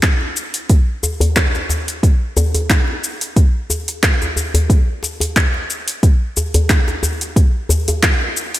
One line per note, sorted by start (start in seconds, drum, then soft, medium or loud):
0.03 kick loud
0.03 clap medium
0.03 open hi-hat soft
0.03 shaker soft
0.21 djembe slap soft
0.37 shaker medium
0.54 open hi-hat medium
0.54 shaker soft
0.69 kick loud
0.69 open hi-hat soft
0.69 shaker soft
1.03 djembe tone medium
1.03 shaker medium
1.20 open hi-hat medium
1.20 djembe bass loud
1.20 shaker soft
1.36 kick loud
1.36 clap loud
1.36 open hi-hat soft
1.36 shaker soft
1.55 djembe slap medium
1.55 shaker soft
1.69 djembe slap medium
1.69 djembe tone medium
1.69 shaker medium
1.88 open hi-hat soft
1.88 shaker soft
2.03 kick loud
2.03 open hi-hat soft
2.03 shaker soft
2.37 djembe slap medium
2.37 djembe bass loud
2.37 shaker medium
2.55 open hi-hat medium
2.55 djembe tone medium
2.55 shaker soft
2.70 kick loud
2.70 clap loud
2.70 open hi-hat soft
2.70 shaker soft
2.88 djembe slap soft
3.04 shaker medium
3.21 open hi-hat medium
3.21 shaker soft
3.36 kick loud
3.36 open hi-hat soft
3.36 shaker soft
3.70 djembe tone medium
3.70 shaker medium
3.88 open hi-hat medium
3.88 shaker soft
4.03 kick loud
4.03 clap loud
4.03 open hi-hat soft
4.03 shaker soft
4.22 djembe tone medium
4.22 shaker soft
4.36 djembe tone medium
4.36 shaker medium
4.54 open hi-hat medium
4.54 djembe bass medium
4.54 shaker soft
4.70 kick loud
4.70 open hi-hat soft
4.70 shaker soft
5.03 djembe slap medium
5.03 shaker medium
5.20 open hi-hat medium
5.20 djembe tone medium
5.20 shaker soft
5.36 kick loud
5.36 clap medium
5.36 open hi-hat soft
5.36 shaker soft
5.54 djembe slap soft
5.70 shaker medium
5.88 open hi-hat medium
5.88 shaker soft
6.03 kick loud
6.03 open hi-hat soft
6.03 shaker soft
6.37 djembe tone medium
6.37 shaker medium
6.54 open hi-hat medium
6.54 djembe bass medium
6.54 shaker soft
6.70 kick loud
6.70 clap loud
6.70 open hi-hat soft
6.70 shaker soft
6.88 djembe slap medium
6.88 shaker soft
7.03 djembe slap medium
7.03 djembe tone medium
7.03 shaker medium
7.21 open hi-hat medium
7.21 shaker soft
7.36 kick loud
7.36 open hi-hat soft
7.36 djembe slap soft
7.36 shaker soft
7.69 djembe slap medium
7.69 djembe bass medium
7.69 shaker medium
7.88 open hi-hat medium
7.88 djembe tone medium
7.88 shaker soft
8.03 kick loud
8.03 clap loud
8.03 open hi-hat soft
8.03 shaker soft
8.21 djembe slap soft
8.37 shaker medium
8.54 open hi-hat medium
8.54 shaker soft